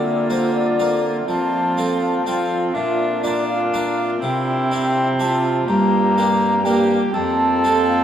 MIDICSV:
0, 0, Header, 1, 6, 480
1, 0, Start_track
1, 0, Tempo, 489396
1, 1258, Time_signature, 3, 2, 24, 8
1, 7884, End_track
2, 0, Start_track
2, 0, Title_t, "Flute"
2, 0, Program_c, 0, 73
2, 0, Note_on_c, 0, 74, 73
2, 286, Note_off_c, 0, 74, 0
2, 300, Note_on_c, 0, 72, 73
2, 534, Note_off_c, 0, 72, 0
2, 539, Note_on_c, 0, 74, 70
2, 1009, Note_off_c, 0, 74, 0
2, 1258, Note_on_c, 0, 81, 82
2, 1940, Note_off_c, 0, 81, 0
2, 1975, Note_on_c, 0, 77, 69
2, 2212, Note_off_c, 0, 77, 0
2, 2216, Note_on_c, 0, 77, 74
2, 2700, Note_on_c, 0, 76, 78
2, 2715, Note_off_c, 0, 77, 0
2, 3179, Note_on_c, 0, 74, 73
2, 3193, Note_off_c, 0, 76, 0
2, 3405, Note_off_c, 0, 74, 0
2, 3411, Note_on_c, 0, 77, 70
2, 3885, Note_off_c, 0, 77, 0
2, 4132, Note_on_c, 0, 79, 91
2, 5052, Note_off_c, 0, 79, 0
2, 5087, Note_on_c, 0, 81, 89
2, 5559, Note_off_c, 0, 81, 0
2, 5571, Note_on_c, 0, 82, 96
2, 6524, Note_on_c, 0, 79, 85
2, 6539, Note_off_c, 0, 82, 0
2, 6996, Note_off_c, 0, 79, 0
2, 7002, Note_on_c, 0, 81, 93
2, 7714, Note_off_c, 0, 81, 0
2, 7730, Note_on_c, 0, 77, 75
2, 7884, Note_off_c, 0, 77, 0
2, 7884, End_track
3, 0, Start_track
3, 0, Title_t, "Viola"
3, 0, Program_c, 1, 41
3, 0, Note_on_c, 1, 65, 55
3, 1256, Note_off_c, 1, 65, 0
3, 1262, Note_on_c, 1, 65, 55
3, 2201, Note_off_c, 1, 65, 0
3, 2218, Note_on_c, 1, 65, 57
3, 2689, Note_off_c, 1, 65, 0
3, 2703, Note_on_c, 1, 65, 54
3, 3172, Note_off_c, 1, 65, 0
3, 3187, Note_on_c, 1, 65, 53
3, 4124, Note_off_c, 1, 65, 0
3, 4142, Note_on_c, 1, 64, 60
3, 5057, Note_off_c, 1, 64, 0
3, 5106, Note_on_c, 1, 65, 62
3, 5574, Note_on_c, 1, 67, 57
3, 5589, Note_off_c, 1, 65, 0
3, 6523, Note_off_c, 1, 67, 0
3, 6529, Note_on_c, 1, 67, 63
3, 7007, Note_on_c, 1, 69, 62
3, 7022, Note_off_c, 1, 67, 0
3, 7884, Note_off_c, 1, 69, 0
3, 7884, End_track
4, 0, Start_track
4, 0, Title_t, "Harpsichord"
4, 0, Program_c, 2, 6
4, 0, Note_on_c, 2, 50, 45
4, 294, Note_on_c, 2, 58, 39
4, 299, Note_on_c, 2, 65, 39
4, 300, Note_on_c, 2, 70, 43
4, 642, Note_off_c, 2, 58, 0
4, 645, Note_off_c, 2, 65, 0
4, 645, Note_off_c, 2, 70, 0
4, 779, Note_on_c, 2, 58, 43
4, 781, Note_on_c, 2, 65, 43
4, 785, Note_on_c, 2, 70, 46
4, 1124, Note_off_c, 2, 58, 0
4, 1125, Note_off_c, 2, 65, 0
4, 1128, Note_off_c, 2, 70, 0
4, 1219, Note_off_c, 2, 50, 0
4, 1260, Note_on_c, 2, 53, 48
4, 1739, Note_on_c, 2, 60, 38
4, 1745, Note_on_c, 2, 65, 39
4, 1749, Note_on_c, 2, 69, 40
4, 2085, Note_off_c, 2, 60, 0
4, 2088, Note_off_c, 2, 65, 0
4, 2091, Note_off_c, 2, 69, 0
4, 2220, Note_on_c, 2, 60, 44
4, 2224, Note_on_c, 2, 65, 45
4, 2229, Note_on_c, 2, 69, 44
4, 2565, Note_off_c, 2, 60, 0
4, 2568, Note_off_c, 2, 65, 0
4, 2571, Note_off_c, 2, 69, 0
4, 2661, Note_off_c, 2, 53, 0
4, 2699, Note_on_c, 2, 46, 46
4, 3174, Note_on_c, 2, 62, 39
4, 3181, Note_on_c, 2, 65, 41
4, 3181, Note_on_c, 2, 70, 45
4, 3522, Note_off_c, 2, 62, 0
4, 3526, Note_off_c, 2, 65, 0
4, 3527, Note_off_c, 2, 70, 0
4, 3664, Note_on_c, 2, 62, 45
4, 3667, Note_on_c, 2, 65, 46
4, 3668, Note_on_c, 2, 70, 51
4, 4008, Note_off_c, 2, 62, 0
4, 4010, Note_off_c, 2, 65, 0
4, 4010, Note_off_c, 2, 70, 0
4, 4100, Note_off_c, 2, 46, 0
4, 4142, Note_on_c, 2, 48, 51
4, 4624, Note_on_c, 2, 60, 42
4, 4627, Note_on_c, 2, 64, 41
4, 4635, Note_on_c, 2, 67, 47
4, 4965, Note_off_c, 2, 60, 0
4, 4967, Note_off_c, 2, 64, 0
4, 4972, Note_off_c, 2, 67, 0
4, 5095, Note_on_c, 2, 60, 48
4, 5098, Note_on_c, 2, 76, 45
4, 5104, Note_on_c, 2, 67, 50
4, 5438, Note_off_c, 2, 60, 0
4, 5441, Note_off_c, 2, 76, 0
4, 5444, Note_off_c, 2, 67, 0
4, 5534, Note_off_c, 2, 48, 0
4, 5575, Note_on_c, 2, 43, 52
4, 6060, Note_on_c, 2, 58, 44
4, 6062, Note_on_c, 2, 62, 43
4, 6065, Note_on_c, 2, 67, 46
4, 6401, Note_off_c, 2, 58, 0
4, 6403, Note_off_c, 2, 62, 0
4, 6405, Note_off_c, 2, 67, 0
4, 6525, Note_on_c, 2, 58, 48
4, 6530, Note_on_c, 2, 62, 47
4, 6533, Note_on_c, 2, 67, 54
4, 6871, Note_off_c, 2, 58, 0
4, 6875, Note_off_c, 2, 62, 0
4, 6876, Note_off_c, 2, 67, 0
4, 6971, Note_off_c, 2, 43, 0
4, 7006, Note_on_c, 2, 41, 51
4, 7495, Note_on_c, 2, 60, 43
4, 7499, Note_on_c, 2, 65, 40
4, 7501, Note_on_c, 2, 69, 43
4, 7841, Note_off_c, 2, 60, 0
4, 7844, Note_off_c, 2, 65, 0
4, 7845, Note_off_c, 2, 69, 0
4, 7884, Note_off_c, 2, 41, 0
4, 7884, End_track
5, 0, Start_track
5, 0, Title_t, "Viola"
5, 0, Program_c, 3, 41
5, 0, Note_on_c, 3, 58, 51
5, 1225, Note_off_c, 3, 58, 0
5, 1257, Note_on_c, 3, 60, 54
5, 2199, Note_off_c, 3, 60, 0
5, 2212, Note_on_c, 3, 60, 55
5, 2689, Note_on_c, 3, 62, 54
5, 2704, Note_off_c, 3, 60, 0
5, 3167, Note_off_c, 3, 62, 0
5, 3173, Note_on_c, 3, 62, 56
5, 4117, Note_off_c, 3, 62, 0
5, 4144, Note_on_c, 3, 60, 57
5, 5535, Note_off_c, 3, 60, 0
5, 5575, Note_on_c, 3, 58, 57
5, 6512, Note_off_c, 3, 58, 0
5, 6536, Note_on_c, 3, 58, 62
5, 7002, Note_off_c, 3, 58, 0
5, 7012, Note_on_c, 3, 60, 59
5, 7884, Note_off_c, 3, 60, 0
5, 7884, End_track
6, 0, Start_track
6, 0, Title_t, "Trombone"
6, 0, Program_c, 4, 57
6, 0, Note_on_c, 4, 50, 56
6, 1225, Note_off_c, 4, 50, 0
6, 1254, Note_on_c, 4, 53, 57
6, 2668, Note_off_c, 4, 53, 0
6, 2696, Note_on_c, 4, 46, 57
6, 4109, Note_off_c, 4, 46, 0
6, 4139, Note_on_c, 4, 48, 65
6, 5533, Note_off_c, 4, 48, 0
6, 5571, Note_on_c, 4, 43, 63
6, 6840, Note_off_c, 4, 43, 0
6, 7007, Note_on_c, 4, 41, 62
6, 7884, Note_off_c, 4, 41, 0
6, 7884, End_track
0, 0, End_of_file